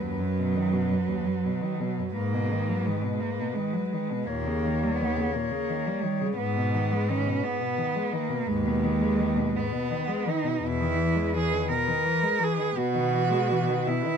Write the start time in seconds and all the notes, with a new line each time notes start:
Already playing: B4
0.01 D#2 F#2 F#3
0.20 F#2
0.39 B2
0.56 D#3
0.73 B2
0.91 F#2
1.09 D#2
1.26 F#2
1.45 B2
1.62 D#3
1.80 B2
1.99 F#2
2.14 G#2 A#3 B4
2.34 B2
2.52 D#3
2.68 F#3
2.86 D#3 G#3
3.04 B2
3.20 G#2 A#3
3.39 B2
3.55 D#3 G#3
3.73 F#3
3.89 D#3 G#3
4.12 B2
4.26 D#2 A#2 A#3 C#5
4.47 C#3
4.65 D#3
4.83 G3
4.95 B3
5.01 D#3
5.17 C#3
5.32 A#2 A#3
5.51 C#3
5.69 D#3
5.87 G3
6.01 D#3 G3
6.21 C#3
6.37 G#2 B3 B4
6.57 B2
6.74 D#3
6.92 G#3
7.09 D#3 C#4
7.26 B2
7.44 G#2 B3
7.60 B2
7.78 D#3
7.96 G#3
8.12 D#3 A#3
8.30 B2
8.47 D#2 G#2 G#3
8.65 B2
8.83 D#3
9.02 G#3
9.19 D#3
9.36 B2
9.55 G#2 B3
9.72 B2
9.90 D#3
10.08 G#3
10.26 D#3 D#4
10.44 B2
10.60 E2 B2 B4
10.67 E4
10.81 D#3
10.98 E3
11.16 G#3
11.34 E3 G#4
11.51 D#3
11.69 B2 A#4
11.87 D#3
12.05 E3
12.22 G#3
12.39 E3
12.44 G#4
12.58 D#3
12.76 B2 F#4
12.94 D#3
13.13 E3
13.30 G#3
13.50 E3
13.68 D#3
13.86 B2 E4
14.05 D#3